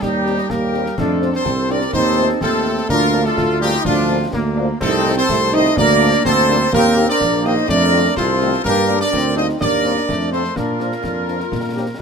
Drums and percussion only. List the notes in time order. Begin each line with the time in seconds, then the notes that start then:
0.02 concert bass drum, snare
0.26 snare
0.38 snare
0.50 concert bass drum, snare
0.74 snare
0.86 snare
0.98 concert bass drum, snare, crash
1.22 snare
1.34 snare
1.45 concert bass drum, snare
1.70 snare
1.81 snare
1.93 concert bass drum, snare
2.17 snare
2.29 snare
2.41 concert bass drum, snare
2.65 snare
2.77 snare
2.89 concert bass drum, snare
3.13 snare
3.25 snare
3.38 concert bass drum, snare
3.61 snare
3.73 snare
3.85 concert bass drum, snare
4.33 concert bass drum, snare
4.81 concert bass drum, snare, crash
5.05 snare
5.17 snare
5.29 concert bass drum, snare
5.53 snare
5.65 snare
5.77 concert bass drum, snare
6.01 snare
6.13 snare
6.25 concert bass drum, snare
6.49 snare
6.61 snare
6.73 concert bass drum, snare
6.97 snare
7.09 snare
7.21 concert bass drum, snare
7.45 snare
7.57 snare
7.69 concert bass drum, snare
7.93 snare
8.05 snare
8.17 concert bass drum, snare
8.41 snare
8.53 snare
8.65 concert bass drum, snare, crash
8.89 snare
9.01 snare
9.13 concert bass drum, snare
9.37 snare
9.49 snare
9.61 concert bass drum, snare
9.85 snare
9.97 snare
10.09 concert bass drum, snare
10.32 snare
10.44 snare
10.56 concert bass drum, snare
10.80 snare
10.92 snare
11.04 concert bass drum, snare
11.28 snare
11.40 snare
11.52 concert bass drum, snare